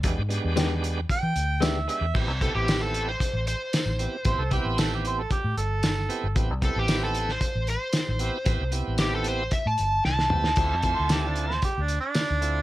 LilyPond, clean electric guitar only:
\new Staff \with { instrumentName = "Clean electric guitar" } { \time 4/4 \key a \minor \tempo 4 = 114 r4 <gis b d' g'>8 r4. <gis b d' g'>8 r8 | r1 | r1 | r1 |
r1 | r1 | }